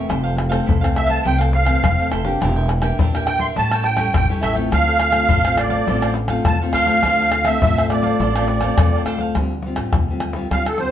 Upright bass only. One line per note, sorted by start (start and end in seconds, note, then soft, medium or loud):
0.09 0.58 F1 loud
0.67 1.16 C2 medium
1.25 1.74 C2 loud
1.83 1.96 F1 medium
2.12 2.36 F1 medium
2.41 2.90 E1 loud
2.99 3.48 A#1 medium
3.57 4.06 A1 loud
4.15 4.27 A1 medium
4.43 4.68 A1 medium
4.72 5.22 D2 loud
5.31 5.80 A1 medium
5.88 6.38 A1 loud
6.46 6.59 D2 medium
6.74 6.99 D2 medium
7.04 7.53 D2 loud
7.62 8.11 A1 medium
8.20 8.69 A1 loud
8.77 9.04 E2 medium
9.05 9.32 D2 medium
9.36 9.73 D2 loud
9.77 9.90 A1 medium
9.93 10.43 D2 medium
10.51 10.88 D2 medium